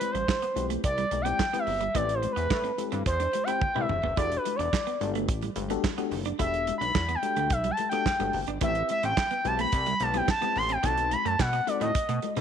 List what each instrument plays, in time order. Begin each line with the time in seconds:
Already playing: fm electric piano C4 E4 G4 B4, analog synth lead B4
0.01 muted clean electric guitar stroke, closed hi-hat, high conga
0.11 analog synth bass A1, clean electric guitar G3, analog synth lead C5, closed hi-hat
0.28 kick, snare, clap
0.42 clean electric guitar B3, closed hi-hat
0.55 analog synth bass B1, fm electric piano C4 E4 G4 B4, muted clean electric guitar stroke, closed hi-hat, high conga
0.70 clean electric guitar A3, closed hi-hat
0.84 analog synth bass C2, analog synth lead D5, kick, closed hi-hat
0.98 clean electric guitar G3, closed hi-hat
1.11 analog synth bass B1, fm electric piano G4 A4, muted clean electric guitar stroke, closed hi-hat, high conga
1.22 clean electric guitar B3, fm electric piano C4, analog synth lead G5
1.26 fm electric piano E4 G4 D5, closed hi-hat, high conga
1.39 kick, snare, clap
1.53 clean electric guitar B3, fm electric piano C4 E4 G4 B4, closed hi-hat, high conga
1.59 analog synth lead E5
1.67 analog synth bass G1, muted clean electric guitar stroke, open hi-hat, low conga
1.81 clean electric guitar G3, closed hi-hat
1.95 analog synth bass A1, clean electric guitar A3, fm electric piano C4 E4 G4 B4, analog synth lead D5, kick, closed hi-hat, low conga
2.09 closed hi-hat
2.14 analog synth lead C5
2.22 muted clean electric guitar stroke, closed hi-hat, high conga
2.33 clean electric guitar B3, analog synth lead B4, high conga
2.37 analog synth bass E2, closed hi-hat
2.50 analog synth bass A2, kick, snare, clap
2.64 clean electric guitar C4, closed hi-hat, muted conga
2.78 fm electric piano C4 E4 G4 A4, muted clean electric guitar stroke, closed hi-hat, high conga
2.92 analog synth bass G2, clean electric guitar C4, closed hi-hat, low conga
3.06 analog synth bass E2, analog synth lead C5, kick, closed hi-hat
3.20 clean electric guitar D4, closed hi-hat, muted conga
3.33 fm electric piano G4 B4, muted clean electric guitar stroke, closed hi-hat, high conga
3.44 fm electric piano C4 E4 G4 C5, analog synth lead G5, closed hi-hat
3.48 clean electric guitar E4, high conga
3.62 kick, high tom, muted conga
3.75 analog synth bass C2, fm electric piano C4 E4 G4 B4, clean electric guitar E4, mid tom, high conga
3.80 analog synth lead E5
3.89 analog synth bass E1, muted clean electric guitar stroke, mid tom, low conga
4.03 analog synth bass F#1, clean electric guitar B3, floor tom
4.17 analog synth bass E1, fm electric piano D4 F#4 G4 A4, clean electric guitar E4, analog synth lead D5, kick, closed hi-hat, muted conga, low conga
4.32 closed hi-hat
4.37 analog synth lead B4
4.45 muted clean electric guitar stroke, closed hi-hat, high conga
4.56 analog synth bass E1, clean electric guitar D4, analog synth lead D5, closed hi-hat
4.73 kick, snare, clap
4.87 clean electric guitar B3, closed hi-hat
5.00 analog synth bass G1, fm electric piano D4 F#4 G4 A4, muted clean electric guitar stroke, closed hi-hat, high conga
5.15 clean electric guitar A3, closed hi-hat
5.28 analog synth bass A1, kick, closed hi-hat
5.42 clean electric guitar G3, closed hi-hat, muted conga
5.56 analog synth bass G1, fm electric piano G4 B4, muted clean electric guitar stroke, closed hi-hat, high conga
5.70 clean electric guitar B3, fm electric piano D4 F#4 G4 A4, closed hi-hat, high conga
5.84 kick, snare, clap
5.98 clean electric guitar B3, fm electric piano D4 F#4 G4 A4, closed hi-hat, muted conga, high conga
6.11 analog synth bass F#1, muted clean electric guitar stroke, open hi-hat, low conga
6.25 clean electric guitar D4, closed hi-hat
6.39 analog synth bass E1, fm electric piano D4 F#4 G4 A4, clean electric guitar E4, analog synth lead E5, kick, closed hi-hat, muted conga, low conga
6.54 closed hi-hat
6.67 muted clean electric guitar stroke, closed hi-hat, high conga
6.78 analog synth bass B1, clean electric guitar D4, analog synth lead B5, closed hi-hat
6.95 analog synth bass E2, kick, snare, clap, muted conga
7.09 clean electric guitar B3, closed hi-hat
7.15 analog synth lead G5
7.22 fm electric piano D4 F#4 G4 A4, muted clean electric guitar stroke, closed hi-hat, high conga
7.36 analog synth bass D2, clean electric guitar A3, closed hi-hat
7.50 analog synth bass B1, analog synth lead E5, kick, closed hi-hat, muted conga
7.64 clean electric guitar G3, closed hi-hat, muted conga
7.71 analog synth lead A5
7.77 fm electric piano G4 A4, muted clean electric guitar stroke, closed hi-hat, high conga
7.89 clean electric guitar B3, fm electric piano D4 F#4 G4 A4, analog synth lead G5, closed hi-hat, high conga
8.06 kick, snare, clap
8.19 analog synth bass G1, clean electric guitar B3, fm electric piano D4 F#4 G4 A4, closed hi-hat, muted conga, high conga
8.33 analog synth bass F#1, muted clean electric guitar stroke, open hi-hat, low conga
8.47 analog synth bass G1, clean electric guitar D4, closed hi-hat
8.61 analog synth bass A1, clean electric guitar A3, fm electric piano C4 E4 G4 B4, analog synth lead E5, kick, closed hi-hat, low conga
8.75 closed hi-hat, muted conga
8.89 analog synth lead E5, muted clean electric guitar stroke, closed hi-hat, high conga
9.03 analog synth bass A1, clean electric guitar C4, analog synth lead G5, closed hi-hat
9.17 kick, snare, clap
9.31 clean electric guitar B3, closed hi-hat, muted conga
9.44 analog synth bass B1, fm electric piano C4 E4 G4 B4, analog synth lead A5, muted clean electric guitar stroke, closed hi-hat, high conga
9.59 clean electric guitar A3, analog synth lead B5, closed hi-hat
9.72 analog synth bass C2, analog synth lead B5, kick, closed hi-hat, muted conga
9.86 clean electric guitar G3, closed hi-hat, muted conga
10.00 analog synth bass B1, fm electric piano G4 B4, analog synth lead A5, muted clean electric guitar stroke, closed hi-hat, high conga
10.14 clean electric guitar B3, fm electric piano C4 E4 G4 B4, analog synth lead G5, closed hi-hat, high conga
10.28 analog synth lead A5, kick, snare, clap
10.41 clean electric guitar B3, fm electric piano C4 E4 G4 B4, closed hi-hat, muted conga, high conga
10.56 analog synth bass A1, analog synth lead C6, muted clean electric guitar stroke, open hi-hat, low conga
10.69 clean electric guitar C4, analog synth lead G5, closed hi-hat
10.83 analog synth bass B1, clean electric guitar B3, fm electric piano C4 D#4 F#4 A4, analog synth lead A5, kick, closed hi-hat, low conga
10.97 closed hi-hat, muted conga
11.11 analog synth lead B5, muted clean electric guitar stroke, closed hi-hat, high conga
11.25 analog synth bass F#2, clean electric guitar A3, analog synth lead A5, closed hi-hat
11.39 analog synth bass B2, analog synth lead F#5, kick, snare, clap
11.53 clean electric guitar B3, closed hi-hat
11.67 fm electric piano C4 D#4 F#4 A4, analog synth lead D5, muted clean electric guitar stroke, closed hi-hat, high conga
11.81 analog synth bass A2, clean electric guitar A3, analog synth lead D#5, closed hi-hat, low conga
11.95 kick, closed hi-hat, muted conga
12.09 analog synth bass B2, clean electric guitar A3, closed hi-hat
12.22 fm electric piano F#4 A4, muted clean electric guitar stroke, closed hi-hat, high conga
12.36 analog synth bass B2, clean electric guitar B3, fm electric piano C4 D#4 F#4 A4, closed hi-hat, high conga